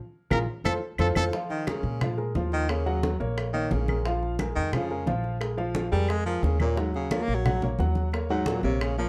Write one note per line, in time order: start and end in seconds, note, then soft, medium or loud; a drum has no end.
0.30 0.44 A#1 loud
0.30 0.42 F4 loud
0.30 0.42 G#4 loud
0.30 0.42 A#4 loud
0.30 0.39 A#4 medium
0.30 low bongo loud
0.30 high conga loud
0.30 claves loud
0.64 0.77 F2 medium
0.64 0.76 F4 loud
0.64 0.73 A4 loud
0.64 0.76 A4 medium
0.64 0.76 C5 loud
0.64 low bongo loud
0.64 high conga medium
0.64 claves loud
0.98 1.12 F2 medium
0.98 1.10 F4 loud
0.98 1.10 A4 loud
0.98 1.08 A4 medium
0.98 1.10 C5 loud
0.98 low bongo medium
0.98 high conga medium
0.98 claves medium
1.15 1.29 F2 loud
1.15 1.28 F4 medium
1.15 1.25 A4 loud
1.15 1.28 A4 medium
1.15 1.28 C5 loud
1.15 low bongo loud
1.15 high conga loud
1.15 claves medium
1.33 1.62 F3 medium
1.33 1.62 F4 medium
1.33 1.62 F5 medium
1.33 high bongo medium
1.33 high conga soft
1.50 1.69 D#3 medium
1.50 high bongo soft
1.50 high conga soft
1.67 2.01 C#3 medium
1.67 1.96 G#3 medium
1.67 1.96 G#4 medium
1.67 1.96 A#4 medium
1.67 high bongo medium
1.67 high conga loud
1.67 claves medium
1.83 2.31 A#2 loud
1.83 high bongo soft
1.83 high conga soft
2.01 2.15 F3 medium
2.01 2.16 F4 medium
2.01 2.16 F5 medium
2.01 high bongo medium
2.01 high conga soft
2.01 low conga medium
2.01 claves medium
2.17 2.32 G#3 medium
2.17 2.32 G#4 medium
2.17 2.32 A#4 medium
2.17 high conga soft
2.35 3.15 D#2 loud
2.35 2.63 F3 medium
2.35 2.63 F4 medium
2.35 2.63 F5 medium
2.35 high bongo soft
2.35 low bongo medium
2.35 high conga medium
2.52 2.71 D#3 loud
2.52 high bongo soft
2.69 3.04 C#3 medium
2.69 2.83 A#3 medium
2.69 2.83 A#4 medium
2.69 2.83 C#5 medium
2.69 high bongo medium
2.69 high conga soft
2.69 claves medium
2.86 3.14 F#3 medium
2.86 3.14 F#4 medium
2.86 3.14 F#5 medium
2.86 high bongo soft
2.86 high conga soft
3.03 high bongo medium
3.03 high conga medium
3.20 3.68 A#1 medium
3.20 3.48 A#3 medium
3.20 3.48 A#4 medium
3.20 3.48 C#5 medium
3.20 high bongo soft
3.20 high conga soft
3.38 high bongo medium
3.38 high conga soft
3.38 claves medium
3.53 3.73 D#3 loud
3.53 3.82 A#3 medium
3.53 3.82 A#4 medium
3.53 3.82 C#5 medium
3.53 high conga soft
3.71 4.51 A#1 medium
3.71 4.06 C#3 medium
3.71 high bongo soft
3.71 low bongo medium
3.71 high conga medium
3.88 4.03 G#3 medium
3.88 4.03 G#4 medium
3.88 4.03 A#4 medium
3.88 high bongo soft
3.88 high conga medium
3.88 claves medium
4.05 4.34 F3 medium
4.05 4.34 F4 medium
4.05 4.34 F5 medium
4.05 high bongo medium
4.05 high conga soft
4.23 high bongo soft
4.23 high conga soft
4.39 4.67 G#3 medium
4.39 4.68 G#4 medium
4.39 4.68 A#4 medium
4.39 high bongo medium
4.39 high conga loud
4.39 claves medium
4.55 5.04 F2 medium
4.55 4.74 D#3 loud
4.55 high bongo soft
4.55 high conga soft
4.73 5.07 C#3 medium
4.73 4.88 F3 medium
4.73 4.88 F4 medium
4.73 4.88 F5 medium
4.73 high bongo medium
4.73 high conga soft
4.73 low conga medium
4.73 claves medium
4.91 5.05 G#3 medium
4.91 5.05 G#4 medium
4.91 5.05 A#4 medium
4.91 high conga soft
5.06 5.86 A#1 medium
5.06 5.35 F3 medium
5.06 5.35 F4 medium
5.06 5.35 F5 medium
5.06 high bongo soft
5.06 low bongo medium
5.06 high conga medium
5.24 high bongo soft
5.41 5.55 G#3 medium
5.41 5.55 G#4 medium
5.41 5.55 A#4 medium
5.41 high bongo medium
5.41 high conga soft
5.41 claves medium
5.57 5.86 F3 medium
5.57 5.86 F4 medium
5.57 5.86 F5 medium
5.57 high bongo soft
5.57 high conga soft
5.75 high bongo medium
5.75 high conga loud
5.92 6.40 F2 medium
5.92 6.10 G3 loud
5.92 6.20 G#3 medium
5.92 6.20 G#4 medium
5.92 6.20 A#4 medium
5.92 high bongo soft
5.92 high conga soft
6.09 6.25 G#3 loud
6.09 high bongo medium
6.09 high conga soft
6.09 claves medium
6.26 6.44 F3 medium
6.26 6.55 G#3 medium
6.26 6.55 G#4 medium
6.26 6.55 A#4 medium
6.26 high conga soft
6.43 7.22 D#2 medium
6.43 6.60 C#3 medium
6.43 high bongo soft
6.43 low bongo medium
6.43 high conga medium
6.60 6.80 A#2 loud
6.60 6.74 A#3 medium
6.60 6.75 A#4 medium
6.60 6.75 C#5 medium
6.60 high bongo soft
6.60 high conga medium
6.60 claves medium
6.76 6.94 G#2 medium
6.76 7.05 F#3 medium
6.76 7.05 F#4 medium
6.76 7.05 F#5 medium
6.76 high bongo medium
6.76 high conga soft
6.94 7.14 C#3 medium
6.94 high bongo soft
6.94 high conga soft
7.11 7.24 F3 medium
7.11 7.39 A#3 medium
7.11 7.39 A#4 medium
7.11 7.39 C#5 medium
7.11 high bongo medium
7.11 high conga medium
7.11 claves medium
7.22 7.36 A#3 loud
7.28 7.76 A#1 loud
7.28 high bongo soft
7.28 high conga soft
7.34 7.68 F#3 medium
7.45 7.59 F#3 medium
7.45 7.60 F#4 medium
7.45 7.60 F#5 medium
7.45 high bongo medium
7.45 high conga soft
7.45 low conga medium
7.45 claves medium
7.62 7.76 A#3 medium
7.62 7.77 A#4 medium
7.62 7.77 C#5 medium
7.62 high conga soft
7.62 low conga medium
7.79 8.58 D#2 medium
7.79 8.07 F#3 medium
7.79 8.07 F#4 medium
7.79 8.07 F#5 medium
7.79 high bongo soft
7.79 low bongo medium
7.79 high conga medium
7.95 high bongo soft
7.95 high conga medium
8.12 8.27 A#3 medium
8.12 8.27 A#4 medium
8.12 8.28 C#5 medium
8.12 high bongo medium
8.12 high conga soft
8.12 claves medium
8.30 8.49 G#2 medium
8.30 8.58 F#3 medium
8.30 8.58 F#4 medium
8.30 8.58 F#5 medium
8.30 high bongo soft
8.30 high conga soft
8.46 8.63 A#2 medium
8.46 high bongo medium
8.46 high conga loud
8.63 9.09 A#1 loud
8.63 8.83 C3 medium
8.63 8.92 A#3 medium
8.63 8.92 A#4 medium
8.63 8.92 C#5 medium
8.63 high bongo soft
8.63 high conga soft
8.81 8.97 C#3 medium
8.81 high bongo medium
8.81 high conga soft
8.81 claves medium
8.98 9.09 F3 medium
8.98 9.09 A#3 medium
8.98 9.09 A#4 medium
8.98 9.09 C#5 medium
8.98 high conga soft